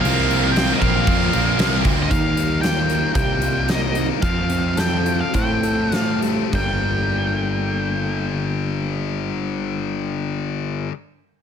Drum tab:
CC |xxxxxxxx|--------|--------|x-------|
HH |--------|xxxxxxxx|xxxxxxxx|--------|
SD |--o---o-|--o---o-|--o---o-|--------|
BD |---oo--o|o---o---|o---o---|o-------|

CC |--------|
HH |--------|
SD |--------|
BD |--------|